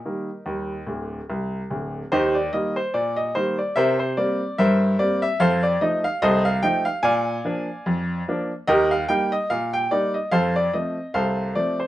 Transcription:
0.00 1.25 G4 medium
0.00 1.25 A#4 medium
0.00 0.78 D#5 medium
0.05 0.28 D#3 soft
0.05 0.28 G3 soft
0.05 0.28 A#3 soft
0.46 0.81 D#2 medium
0.46 0.70 G3 soft
0.87 1.18 D1 medium
0.87 1.18 D2 medium
1.30 1.60 C2 medium
1.70 2.01 D1 medium
1.70 2.01 D2 medium
2.12 2.47 D#2 medium
2.12 2.34 D#4 medium
2.12 2.34 G4 medium
2.12 2.35 C5 medium
2.35 2.53 D5 medium
2.53 2.76 D#3 soft
2.53 2.76 G3 soft
2.53 2.77 A#3 medium
2.53 2.76 D#5 medium
2.76 2.94 C5 medium
2.94 3.29 A#2 medium
2.94 3.17 D5 medium
3.16 3.35 D#5 medium
3.35 3.58 D#3 soft
3.35 3.58 G3 soft
3.35 3.58 A#3 medium
3.35 3.58 C5 medium
3.58 3.76 D5 medium
3.76 4.11 C3 medium
3.76 3.98 A#4 medium
3.76 3.98 C5 medium
3.76 3.99 E5 loud
3.99 4.17 C5 medium
4.17 4.40 G3 medium
4.17 4.40 A#3 medium
4.17 4.41 C4 medium
4.17 4.56 D5 medium
4.58 4.94 G2 medium
4.58 4.97 A#4 medium
4.58 4.97 C5 medium
4.58 4.97 E5 loud
4.99 5.22 G3 medium
4.99 5.22 A#3 soft
4.99 5.23 C4 medium
4.99 5.22 D5 medium
5.22 5.40 E5 medium
5.40 5.75 F2 medium
5.40 5.62 A4 medium
5.40 5.62 C5 medium
5.40 5.63 F5 loud
5.63 5.81 D5 medium
5.81 6.04 F3 soft
5.81 6.04 A3 medium
5.81 6.04 D#4 medium
5.81 6.05 D#5 medium
6.04 6.22 F5 loud
6.22 6.57 C2 medium
6.22 6.45 A4 medium
6.22 6.45 C5 medium
6.22 6.45 D#5 loud
6.45 6.63 F5 loud
6.63 6.86 F3 medium
6.63 6.86 A3 medium
6.63 6.86 D#4 medium
6.63 6.86 G5 loud
6.85 7.03 F5 loud
7.03 7.38 A#2 loud
7.03 8.23 D5 medium
7.03 8.23 F5 medium
7.03 8.02 G#5 loud
7.45 7.67 F3 medium
7.45 7.67 A#3 medium
7.45 7.68 D4 medium
7.86 8.21 F2 medium
8.28 8.50 F3 medium
8.28 8.51 A#3 medium
8.28 8.51 D4 medium
8.67 9.03 D#2 loud
8.67 8.90 G4 medium
8.67 8.90 A#4 medium
8.67 8.91 D#5 loud
8.91 9.09 F5 medium
9.09 9.32 G3 medium
9.09 9.32 A#3 medium
9.09 9.32 D#4 medium
9.09 9.32 G5 loud
9.32 9.50 D#5 medium
9.50 9.85 A#2 medium
9.50 9.73 F5 loud
9.73 9.91 G5 loud
9.91 10.14 G3 soft
9.91 10.14 A#3 soft
9.91 10.15 D#4 medium
9.91 10.14 D5 medium
10.14 10.32 D#5 medium
10.31 10.67 F2 medium
10.31 10.54 A4 medium
10.31 10.54 C5 medium
10.31 10.55 F5 loud
10.56 10.74 D5 medium
10.74 10.96 F3 soft
10.74 10.97 A3 soft
10.74 10.97 C4 soft
10.74 11.12 D#5 medium
11.14 11.50 C2 medium
11.14 11.53 A4 medium
11.14 11.53 C5 medium
11.14 11.53 F5 loud
11.55 11.78 F3 soft
11.55 11.79 A3 soft
11.55 11.79 C4 soft
11.55 11.79 D5 medium
11.80 11.87 C5 medium

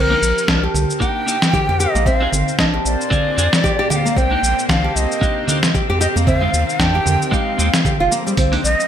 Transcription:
0.00 0.16 C2 loud
0.00 2.06 C3 medium
0.00 0.10 C4 medium
0.00 8.88 C4 medium
0.00 0.81 G4 medium
0.00 0.71 A#4 loud
0.10 0.17 A#3 medium
0.10 0.18 D4 medium
0.10 0.18 D#4 medium
0.10 0.18 G4 medium
0.22 0.33 A#1 medium
0.22 shaker medium
0.38 shaker soft
0.44 6.27 C5 medium
0.48 0.68 C2 medium
0.48 0.62 D4 loud
0.48 kick loud
0.48 snare medium
0.48 shaker soft
0.53 2.91 A#4 medium
0.63 1.15 G4 medium
0.74 0.85 C2 medium
0.74 low conga medium
0.74 shaker medium
0.90 shaker soft
1.00 1.24 A#3 medium
1.00 1.24 D4 medium
1.00 1.25 D#4 medium
1.00 1.25 G4 loud
1.00 1.82 G5 loud
1.00 kick loud
1.00 shaker soft
1.26 1.36 A#3 medium
1.26 1.36 D4 medium
1.26 1.37 D#4 medium
1.26 1.37 G4 medium
1.26 shaker medium
1.42 snare medium
1.42 shaker soft
1.53 1.67 G4 medium
1.53 kick loud
1.53 low conga medium
1.53 shaker soft
1.69 1.87 F2 medium
1.69 1.79 G4 medium
1.80 1.94 G4 loud
1.80 2.08 D#5 loud
1.80 shaker medium
1.95 2.28 A#1 medium
1.95 2.06 A#3 medium
1.95 shaker soft
2.06 4.17 A#2 medium
2.06 2.21 C4 medium
2.06 2.58 F5 loud
2.06 kick loud
2.06 shaker soft
2.14 5.02 A#3 medium
2.20 2.28 C4 medium
2.20 2.28 D4 medium
2.20 2.28 F4 medium
2.20 2.29 G#4 medium
2.32 2.43 G#1 medium
2.32 low conga medium
2.32 shaker medium
2.48 shaker soft
2.59 2.79 A#1 medium
2.59 2.72 D4 loud
2.59 2.65 D#5 medium
2.59 kick loud
2.59 snare medium
2.59 shaker soft
2.74 3.25 G4 medium
2.85 2.96 A#1 medium
2.85 3.92 D5 loud
2.85 shaker medium
3.01 shaker soft
3.10 3.35 C4 medium
3.10 3.35 D4 medium
3.10 3.35 F4 medium
3.10 3.36 G#4 loud
3.10 kick loud
3.10 low conga medium
3.10 shaker soft
3.37 3.49 F2 medium
3.37 3.47 C4 medium
3.37 3.47 D4 medium
3.37 3.47 F4 medium
3.37 3.48 G#4 loud
3.37 shaker medium
3.53 snare medium
3.53 shaker soft
3.64 3.78 G4 loud
3.64 kick loud
3.64 shaker soft
3.79 3.89 G4 medium
3.90 4.04 G4 medium
3.90 3.97 G5 medium
3.90 low conga medium
3.90 shaker medium
3.96 4.19 F5 loud
4.05 4.16 A#3 medium
4.05 shaker soft
4.16 4.37 C2 medium
4.16 6.27 C3 medium
4.16 4.31 C4 loud
4.16 4.69 G5 loud
4.16 kick loud
4.16 shaker soft
4.31 4.38 A#3 medium
4.31 4.38 D4 medium
4.31 4.39 D#4 medium
4.31 4.39 G4 medium
4.43 4.54 A#1 medium
4.43 shaker medium
4.59 shaker soft
4.69 4.89 C2 medium
4.69 4.83 D4 loud
4.69 4.97 F5 medium
4.69 kick loud
4.69 snare medium
4.69 low conga medium
4.69 shaker soft
4.84 5.36 G4 medium
4.96 5.07 C2 medium
4.96 5.74 D#5 medium
4.96 shaker medium
5.12 7.12 D#3 medium
5.12 6.94 A#4 medium
5.12 shaker soft
5.21 5.45 A#3 medium
5.21 5.45 D4 medium
5.21 5.46 D#4 medium
5.21 5.46 G4 medium
5.21 kick loud
5.21 shaker soft
5.47 5.57 A#3 medium
5.47 5.58 D4 medium
5.47 5.58 D#4 medium
5.47 5.58 G4 loud
5.47 low conga medium
5.47 shaker medium
5.63 snare medium
5.63 shaker soft
5.74 5.88 G4 medium
5.74 kick loud
5.74 shaker soft
5.90 6.08 F2 medium
5.90 6.00 G4 loud
6.01 6.15 G4 loud
6.01 6.07 D#5 medium
6.01 shaker medium
6.16 6.49 F2 medium
6.16 6.27 A#3 medium
6.16 shaker medium
6.27 8.38 F3 medium
6.27 6.42 C4 loud
6.27 6.81 F5 loud
6.27 kick loud
6.27 low conga medium
6.27 shaker soft
6.41 6.49 G#3 medium
6.41 6.49 C4 medium
6.41 6.49 D#4 medium
6.41 6.50 G4 medium
6.53 6.64 D#2 medium
6.53 shaker medium
6.69 shaker soft
6.79 7.00 F2 medium
6.79 6.93 D4 loud
6.79 7.34 G5 loud
6.79 kick loud
6.79 snare medium
6.79 shaker soft
6.95 7.46 G4 medium
7.06 7.17 F2 medium
7.06 low conga medium
7.06 shaker medium
7.22 8.88 G4 medium
7.22 shaker soft
7.31 7.56 G#3 medium
7.31 7.56 C4 medium
7.31 7.56 D#4 medium
7.31 7.57 G4 loud
7.31 8.11 F5 medium
7.31 kick loud
7.31 shaker soft
7.58 7.70 D#2 loud
7.58 7.68 G#3 medium
7.58 7.68 C4 medium
7.58 7.68 D#4 medium
7.58 7.69 G4 loud
7.58 shaker medium
7.74 snare medium
7.74 shaker soft
7.85 7.99 G4 medium
7.85 kick loud
7.85 low conga medium
7.85 shaker soft
8.00 8.08 F1 medium
8.00 8.10 F4 medium
8.11 8.25 A#3 medium
8.11 shaker medium
8.27 8.33 G3 medium
8.27 shaker soft
8.37 8.58 C2 loud
8.37 8.88 C3 medium
8.37 8.52 C4 medium
8.37 kick loud
8.37 open hi-hat medium
8.37 low conga medium
8.37 shaker soft
8.52 8.59 A#3 medium
8.52 8.60 D4 medium
8.52 8.60 D#4 medium
8.52 8.60 G4 medium
8.52 open hi-hat soft
8.64 8.75 A#1 medium
8.64 8.88 D#5 loud
8.64 shaker medium
8.80 shaker soft

